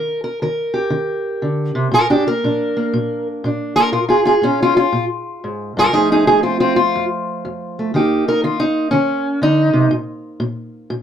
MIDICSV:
0, 0, Header, 1, 2, 480
1, 0, Start_track
1, 0, Key_signature, -2, "major"
1, 0, Tempo, 500000
1, 1852, Time_signature, 4, 2, 24, 8
1, 10586, End_track
2, 0, Start_track
2, 0, Title_t, "Steel-string acoustic guitar"
2, 0, Program_c, 0, 25
2, 0, Note_on_c, 0, 51, 74
2, 0, Note_on_c, 0, 70, 71
2, 225, Note_off_c, 0, 70, 0
2, 229, Note_on_c, 0, 70, 58
2, 361, Note_off_c, 0, 51, 0
2, 403, Note_on_c, 0, 51, 76
2, 404, Note_off_c, 0, 70, 0
2, 408, Note_on_c, 0, 70, 61
2, 707, Note_on_c, 0, 67, 61
2, 853, Note_off_c, 0, 51, 0
2, 867, Note_on_c, 0, 51, 70
2, 1326, Note_off_c, 0, 51, 0
2, 1363, Note_on_c, 0, 50, 55
2, 1675, Note_off_c, 0, 50, 0
2, 1679, Note_on_c, 0, 48, 69
2, 1825, Note_off_c, 0, 67, 0
2, 1834, Note_off_c, 0, 48, 0
2, 1838, Note_on_c, 0, 46, 71
2, 1858, Note_on_c, 0, 65, 76
2, 1860, Note_off_c, 0, 70, 0
2, 1863, Note_on_c, 0, 70, 82
2, 1905, Note_off_c, 0, 65, 0
2, 2015, Note_on_c, 0, 62, 81
2, 2018, Note_off_c, 0, 70, 0
2, 2023, Note_on_c, 0, 67, 87
2, 2174, Note_off_c, 0, 62, 0
2, 2176, Note_off_c, 0, 67, 0
2, 2178, Note_on_c, 0, 58, 50
2, 2185, Note_on_c, 0, 70, 94
2, 2292, Note_off_c, 0, 46, 0
2, 2342, Note_on_c, 0, 46, 67
2, 2346, Note_on_c, 0, 62, 44
2, 2652, Note_off_c, 0, 58, 0
2, 2655, Note_on_c, 0, 58, 48
2, 2785, Note_off_c, 0, 46, 0
2, 2817, Note_on_c, 0, 46, 75
2, 3141, Note_off_c, 0, 70, 0
2, 3263, Note_off_c, 0, 46, 0
2, 3302, Note_off_c, 0, 62, 0
2, 3303, Note_on_c, 0, 46, 77
2, 3315, Note_on_c, 0, 62, 45
2, 3607, Note_on_c, 0, 70, 100
2, 3608, Note_off_c, 0, 58, 0
2, 3612, Note_on_c, 0, 65, 90
2, 3619, Note_on_c, 0, 58, 45
2, 3689, Note_off_c, 0, 65, 0
2, 3746, Note_off_c, 0, 46, 0
2, 3759, Note_off_c, 0, 70, 0
2, 3761, Note_off_c, 0, 58, 0
2, 3765, Note_off_c, 0, 62, 0
2, 3766, Note_on_c, 0, 46, 75
2, 3768, Note_on_c, 0, 65, 69
2, 3771, Note_on_c, 0, 70, 77
2, 3822, Note_off_c, 0, 65, 0
2, 3918, Note_off_c, 0, 70, 0
2, 3922, Note_on_c, 0, 65, 69
2, 3934, Note_on_c, 0, 68, 81
2, 4027, Note_off_c, 0, 65, 0
2, 4084, Note_on_c, 0, 65, 78
2, 4085, Note_off_c, 0, 68, 0
2, 4096, Note_on_c, 0, 68, 97
2, 4165, Note_off_c, 0, 65, 0
2, 4218, Note_off_c, 0, 46, 0
2, 4240, Note_on_c, 0, 46, 70
2, 4254, Note_on_c, 0, 65, 80
2, 4257, Note_off_c, 0, 68, 0
2, 4262, Note_on_c, 0, 61, 74
2, 4416, Note_off_c, 0, 65, 0
2, 4420, Note_off_c, 0, 61, 0
2, 4439, Note_on_c, 0, 61, 79
2, 4440, Note_on_c, 0, 65, 86
2, 4564, Note_off_c, 0, 65, 0
2, 4575, Note_on_c, 0, 65, 94
2, 4589, Note_off_c, 0, 61, 0
2, 4695, Note_off_c, 0, 46, 0
2, 4728, Note_on_c, 0, 46, 76
2, 4840, Note_off_c, 0, 65, 0
2, 5179, Note_off_c, 0, 46, 0
2, 5220, Note_on_c, 0, 44, 59
2, 5531, Note_off_c, 0, 44, 0
2, 5537, Note_on_c, 0, 43, 66
2, 5554, Note_on_c, 0, 65, 92
2, 5559, Note_on_c, 0, 70, 111
2, 5621, Note_off_c, 0, 65, 0
2, 5688, Note_off_c, 0, 43, 0
2, 5692, Note_on_c, 0, 41, 71
2, 5694, Note_on_c, 0, 63, 72
2, 5698, Note_on_c, 0, 53, 52
2, 5699, Note_off_c, 0, 70, 0
2, 5699, Note_on_c, 0, 68, 68
2, 5710, Note_on_c, 0, 57, 48
2, 5855, Note_off_c, 0, 63, 0
2, 5855, Note_off_c, 0, 68, 0
2, 5872, Note_on_c, 0, 63, 77
2, 5876, Note_on_c, 0, 68, 89
2, 6009, Note_off_c, 0, 68, 0
2, 6011, Note_off_c, 0, 63, 0
2, 6016, Note_off_c, 0, 57, 0
2, 6021, Note_on_c, 0, 68, 100
2, 6022, Note_on_c, 0, 63, 85
2, 6035, Note_on_c, 0, 57, 44
2, 6142, Note_off_c, 0, 41, 0
2, 6166, Note_off_c, 0, 63, 0
2, 6170, Note_on_c, 0, 60, 67
2, 6171, Note_off_c, 0, 68, 0
2, 6175, Note_on_c, 0, 65, 83
2, 6186, Note_on_c, 0, 41, 72
2, 6326, Note_off_c, 0, 65, 0
2, 6327, Note_off_c, 0, 60, 0
2, 6337, Note_on_c, 0, 60, 79
2, 6339, Note_on_c, 0, 65, 87
2, 6480, Note_off_c, 0, 65, 0
2, 6491, Note_on_c, 0, 65, 102
2, 6498, Note_off_c, 0, 60, 0
2, 6628, Note_off_c, 0, 41, 0
2, 6677, Note_on_c, 0, 41, 74
2, 6758, Note_off_c, 0, 65, 0
2, 7113, Note_off_c, 0, 41, 0
2, 7150, Note_on_c, 0, 41, 70
2, 7461, Note_off_c, 0, 57, 0
2, 7478, Note_on_c, 0, 57, 45
2, 7589, Note_off_c, 0, 41, 0
2, 7597, Note_off_c, 0, 53, 0
2, 7611, Note_off_c, 0, 57, 0
2, 7622, Note_on_c, 0, 51, 77
2, 7629, Note_on_c, 0, 58, 52
2, 7636, Note_on_c, 0, 63, 54
2, 7641, Note_on_c, 0, 67, 54
2, 7937, Note_off_c, 0, 63, 0
2, 7947, Note_on_c, 0, 63, 47
2, 7948, Note_off_c, 0, 67, 0
2, 7953, Note_on_c, 0, 70, 101
2, 8065, Note_off_c, 0, 51, 0
2, 8098, Note_on_c, 0, 51, 72
2, 8099, Note_off_c, 0, 70, 0
2, 8103, Note_on_c, 0, 65, 81
2, 8241, Note_off_c, 0, 63, 0
2, 8253, Note_on_c, 0, 63, 96
2, 8258, Note_off_c, 0, 65, 0
2, 8543, Note_off_c, 0, 51, 0
2, 8548, Note_off_c, 0, 63, 0
2, 8552, Note_on_c, 0, 61, 88
2, 8569, Note_on_c, 0, 51, 81
2, 9017, Note_off_c, 0, 51, 0
2, 9039, Note_on_c, 0, 50, 57
2, 9042, Note_off_c, 0, 61, 0
2, 9050, Note_on_c, 0, 63, 102
2, 9340, Note_off_c, 0, 50, 0
2, 9344, Note_on_c, 0, 48, 68
2, 9507, Note_off_c, 0, 48, 0
2, 9511, Note_on_c, 0, 46, 81
2, 9530, Note_off_c, 0, 63, 0
2, 9967, Note_off_c, 0, 46, 0
2, 9982, Note_on_c, 0, 46, 76
2, 10441, Note_off_c, 0, 46, 0
2, 10465, Note_on_c, 0, 46, 80
2, 10586, Note_off_c, 0, 46, 0
2, 10586, Note_off_c, 0, 58, 0
2, 10586, End_track
0, 0, End_of_file